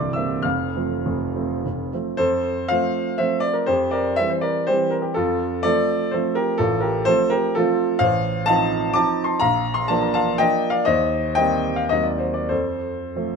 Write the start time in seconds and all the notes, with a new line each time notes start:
Already playing: C1 C2 D5 D6
0.13 G3 A#3 C4 E5 E6
0.42 F1 F2 F5 F6
0.76 F3 A3 C4
1.05 F1 F2
1.35 F3 A3 C4
1.65 F1 F2
1.93 F3 A3 C4
2.17 F2 A4 C5
2.68 F3 A3 C4 C5 F5
3.18 F3 A3 C4 C5 E5
3.40 D5
3.53 A#4
3.66 F2 G4 C5
3.91 A#4 D5
4.16 E3 G3 C4 E5
4.30 C5
4.41 A#4 D5
4.67 E3 G3 C4 G4 C5
4.90 A#4
5.02 G4
5.14 F2 F4 A4
5.63 F3 A3 C4 A4 D5
6.11 F3 A3 C4 A4 C5
6.35 G4 A#4
6.58 A1 F4 A4
6.80 G4 A#4
7.05 F3 A3 C4 A4 C5
7.30 G4 A#4
7.55 F3 A3 C4 F4 A4
7.99 A1 C5 F5
8.46 F3 C4 D#4 F5 A5
8.94 F3 C4 D#4 A5 D6
9.24 A5 C6
9.40 A#1 F5 A#5
9.74 C6
9.88 F3 A#3 D4 A5
10.01 A#5
10.14 F5 A5
10.38 F3 A#3 D4 D#5 G5
10.70 D5 F5
10.85 D#2 C5 D#5
11.35 G3 A#3 C4 D#5 G5
11.76 F5
11.89 D#2 F#3 A#3 C4 D#5
12.03 D5
12.18 C5
12.34 D5
12.49 F2 A4 C5
13.16 F3 A3 C4